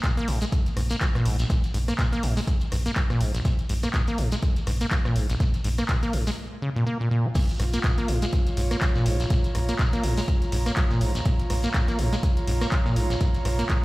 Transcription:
0.04 A#2, kick, clap, closed hi-hat, shekere
0.17 A#3, closed hi-hat, shekere
0.28 A#1 G#2, open hi-hat
0.41 G#3, closed hi-hat, shekere
0.52 kick, closed hi-hat, shekere
0.66 closed hi-hat, shekere
0.77 A#1 G#2, cross-stick, open hi-hat
0.90 A#3, closed hi-hat, shekere
1.01 F3, kick, clap, closed hi-hat, shekere
1.15 A#2, cross-stick, shekere
1.25 A#1 G#2, open hi-hat
1.39 A#1, closed hi-hat, shekere
1.49 A#2, kick, closed hi-hat, shekere
1.64 closed hi-hat, shekere
1.74 A#1 G#2, open hi-hat
1.88 A#3, cross-stick, closed hi-hat, shekere
1.99 A#2, kick, clap, closed hi-hat, shekere
2.12 A#3, closed hi-hat, shekere
2.23 A#1 G#2, open hi-hat
2.37 G#3, open hi-hat, shekere
2.47 kick, closed hi-hat, shekere
2.60 closed hi-hat, shekere
2.72 A#1 G#2, cross-stick, open hi-hat
2.86 A#3, closed hi-hat, shekere
2.96 F3, kick, clap, closed hi-hat, shekere
3.10 A#2, cross-stick, shekere
3.21 A#1 G#2, open hi-hat
3.34 A#1, closed hi-hat, shekere
3.45 A#2, kick, closed hi-hat, shekere
3.59 closed hi-hat, shekere
3.69 A#1 G#2, open hi-hat
3.83 A#3, cross-stick, closed hi-hat, shekere
3.94 A#2, kick, clap, closed hi-hat, shekere
4.08 A#3, closed hi-hat, shekere
4.18 A#1 G#2, open hi-hat
4.32 G#3, closed hi-hat, shekere
4.42 kick, closed hi-hat, shekere
4.56 closed hi-hat, shekere
4.67 A#1 G#2, cross-stick, open hi-hat
4.81 A#3, closed hi-hat, shekere
4.91 F3, kick, clap, closed hi-hat, shekere
5.05 A#2, cross-stick, shekere
5.16 A#1 G#2, open hi-hat
5.30 A#1, closed hi-hat, shekere
5.40 A#2, kick, closed hi-hat, shekere
5.54 closed hi-hat, shekere
5.64 A#1 G#2, open hi-hat
5.78 A#3, cross-stick, closed hi-hat, shekere
5.89 A#2, kick, clap, closed hi-hat, shekere
6.02 A#3, closed hi-hat, shekere
6.13 A#1 G#2, open hi-hat
6.27 G#3, open hi-hat, shekere
6.62 C#3
6.76 A#2
6.87 A#3
7.00 A#2
7.11 A#2
7.25 A#3
7.35 A#2 F4, kick, closed hi-hat, crash, shekere
7.49 closed hi-hat, shekere
7.60 A#1 G#2, cross-stick, open hi-hat
7.73 A#3, closed hi-hat, shekere
7.84 A#2, kick, clap, closed hi-hat, shekere
7.98 A#3, closed hi-hat, shekere
8.08 A#1 G#2, open hi-hat
8.15 C#5
8.22 G#3, closed hi-hat, shekere
8.33 kick, closed hi-hat, shekere
8.47 closed hi-hat, shekere
8.57 A#1 G#2, open hi-hat
8.71 A#3, cross-stick, closed hi-hat, shekere
8.81 F3, kick, clap, closed hi-hat, shekere
8.95 A#2, shekere
9.06 A#1 G#2, open hi-hat
9.18 A#1 A#5, closed hi-hat, shekere
9.30 A#2, kick, closed hi-hat, shekere
9.44 closed hi-hat, shekere
9.55 A#1 G#2, cross-stick, open hi-hat
9.69 A#3, closed hi-hat, shekere
9.79 A#2, kick, clap, closed hi-hat, shekere
9.93 A#3, closed hi-hat, shekere
10.04 A#1 G#2, open hi-hat
10.17 G#3, open hi-hat, shekere
10.28 kick, closed hi-hat, shekere
10.42 closed hi-hat, shekere
10.52 A#1 G#2, open hi-hat
10.66 A#3, cross-stick, closed hi-hat, shekere
10.77 F3, kick, clap, closed hi-hat
10.91 A#2, shekere
11.01 A#1 G#2, open hi-hat
11.15 A#1, closed hi-hat, shekere
11.25 A#2, kick, closed hi-hat, shekere
11.39 closed hi-hat, shekere
11.50 A#1 G#2, cross-stick, open hi-hat
11.63 A#3, closed hi-hat, shekere
11.74 A#2, kick, clap, closed hi-hat, shekere
11.88 A#3, closed hi-hat, shekere
11.99 A#1 G#2, open hi-hat
12.12 G#3, closed hi-hat, shekere
12.23 kick, closed hi-hat, shekere
12.37 closed hi-hat, shekere
12.47 A#1 G#2, open hi-hat
12.61 A#3, cross-stick, closed hi-hat, shekere
12.72 F3, kick, clap, closed hi-hat, shekere
12.86 A#2, shekere
12.96 A#1 G#2, open hi-hat
13.10 A#1, closed hi-hat, shekere
13.21 A#2, kick, closed hi-hat, shekere
13.34 closed hi-hat, shekere
13.45 A#1 G#2, cross-stick, open hi-hat
13.59 A#3, closed hi-hat, shekere
13.69 A#2, kick, clap, closed hi-hat, shekere

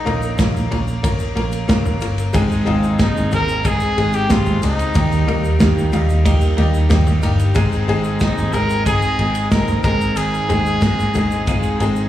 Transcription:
Already playing: A#2 A#3 C#4 D#4 F4 A#4
0.05 A#1 A#3 C#4 F4 A#4, floor tom, ride
0.22 shaker
0.38 A#1 A#3 C#4 F4 A#4, kick, snare, ride, shaker
0.56 shaker
0.71 A#1 A#3 C#4 F4 A#4, floor tom, ride
0.88 shaker
1.03 A#3 C#4 F4 A#4, kick, ride, shaker
1.19 shaker
1.35 A#1 A#3 C#4 F4 A#4, ride
1.52 ride, shaker
1.68 A#1 A#3 C#4 F4 A#4, kick, snare, ride, shaker
1.85 floor tom, shaker
2.00 G1 A#3 C#4 F4 A#4, ride, shaker
2.18 ride, shaker
2.33 G#1 G#2 D#3 G#3 C4 D#4 G#4, kick, ride, shaker
2.51 shaker
2.65 G#1 G#3 C4 D#4 F4, floor tom, ride
2.83 shaker
2.99 G#1 G#2 D#3 G#3 C4 D#4 G#4, kick, snare, ride, shaker
3.17 shaker
3.31 G#1 G#3 C4 D#4 G#4 A#4, floor tom, ride, shaker
3.48 shaker
3.64 G#3 C4 D#4 G#4, kick, ride, shaker
3.80 shaker
3.97 G#1 G#3 C4 D#4 G#4, ride
4.13 G4, ride, shaker
4.29 G#1 G#3 C4 D#4 F4 G4, kick, snare, ride, shaker
4.46 floor tom, shaker
4.62 C#2 G#3 C4 D#4 G#4, ride, shaker
4.79 ride, shaker
4.94 D#2 D#3 G3 A#3 D#4 G4 A#4, kick, ride, shaker
5.12 shaker
5.27 D#2 G3 A#3 D#4 A#4, floor tom, ride
5.44 shaker
5.60 D#2 D#3 G3 A#3 D#4 F4 G4 A#4, kick, snare, ride, shaker
5.78 shaker
5.92 D#2 G3 A#3 D#4 F4 G4 A#4, floor tom, ride, shaker
6.10 shaker
6.24 G3 A#3 D#4 G4 A#4, kick, ride, shaker
6.41 shaker
6.57 D#2 G3 A#3 D#4 G4 A#4, ride
6.74 shaker
6.89 D#2 G3 A#3 D#4 G4, kick, snare, ride, shaker
7.07 floor tom, shaker
7.22 G1 G3 A#3 D#4 G4 A#4, ride, shaker
7.39 ride, shaker
7.54 G#1 G#2 D#3 G#3 C4 D#4 G#4, kick, ride, shaker
7.72 shaker
7.87 G#1 G#3 C4 D#4 G#4, ride
8.04 shaker
8.20 G#1 G#2 D#3 G#3 C4 D#4 G#4, kick, snare, ride, shaker
8.38 shaker
8.53 G#1 G#3 C4 D#4 G#4 A#4, floor tom, ride, shaker
8.70 shaker
8.85 G#3 C4 D#4 G#4, kick, ride, shaker
9.02 shaker
9.18 G#1 G#3 C4 D#4 G#4, ride
9.35 ride, shaker
9.51 G#1 G#3 C4 D#4 A#4, kick, snare, ride, shaker
9.68 floor tom, shaker
9.84 G#1 G#2 G#3 C4 D#4 G#4 A#4, kick, ride, shaker
10.01 shaker
10.16 G#2 D#3 G#3 C4 D#4 G#4, ride, shaker
10.34 shaker
10.49 G#1 G#3 C4 D#4 G#4, floor tom, ride, shaker
10.66 shaker
10.81 G#1 G#2 D#3 G#3 C4 D#4 G#4, kick, snare, ride, shaker
11.00 shaker
11.14 G#1 G#3 C4 D#4 G#4, floor tom, ride, shaker
11.31 shaker
11.47 G#3 C4 D#4 F4 G#4, kick, ride, shaker
11.63 shaker
11.79 G#1 G#3 C4 D#4 G#4, ride, shaker
11.96 shaker

